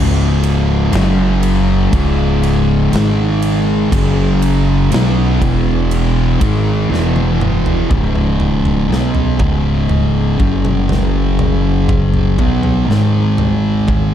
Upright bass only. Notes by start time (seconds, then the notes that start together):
Already playing: C#1
0.92 F#1
1.93 C#1
2.93 G#1
3.92 F#1
4.91 B1
5.41 E1
6.41 G#1
6.90 E1
7.91 C#1
8.89 B1
9.40 C#1
10.40 F#1
12.39 B1
12.88 G#1